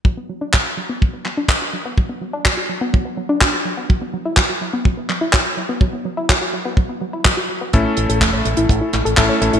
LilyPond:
<<
  \new Staff \with { instrumentName = "Electric grand piano" } { \time 4/4 \key b \dorian \tempo 4 = 125 r1 | r1 | r1 | r1 |
<a cis' e' a'>2. <a cis' e' a'>8 <a cis' e' a'>8 | }
  \new Staff \with { instrumentName = "Synth arpeggio sound" } { \time 4/4 \key b \dorian fis16 b16 fis16 d'16 fis16 fis'16 fis16 b16 fis16 b16 fis16 d'16 fis16 fis'16 fis16 b16 | fis16 b16 fis16 d'16 fis16 fis'16 fis16 b16 fis16 b16 fis16 d'16 fis16 fis'16 fis16 b16 | fis16 b16 fis16 e'16 fis16 fis'16 fis16 b16 fis16 b16 fis16 e'16 fis16 fis'16 fis16 b16 | fis16 b16 fis16 e'16 fis16 fis'16 fis16 b16 fis16 b16 fis16 e'16 fis16 fis'16 fis16 b16 |
a16 e'16 a16 a'16 a16 cis''16 a16 e'16 a16 e'16 a16 a'16 a16 cis''16 a16 e'16 | }
  \new Staff \with { instrumentName = "Fingered electric bass" } { \clef bass \time 4/4 \key b \dorian r1 | r1 | r1 | r1 |
a,,16 r16 a,,16 a,,16 e,,16 a,,16 a,,16 a,,16 a,,16 r16 a,,16 a,,16 a,,16 r16 a,,16 a,,16 | }
  \new DrumStaff \with { instrumentName = "Drums" } \drummode { \time 4/4 bd4 <hc bd>4 bd8 hc8 <hc bd>4 | bd4 <hc bd>4 bd4 <hc bd>4 | bd4 <hc bd>4 bd8 hc8 <hc bd>4 | bd4 <hc bd>4 bd4 <hc bd>4 |
<hh bd>8 hh16 hh16 <hc hh bd>8 hh16 hh16 <hh bd>8 <hc hh>16 hh16 <hc hh bd>8 hh16 hh16 | }
>>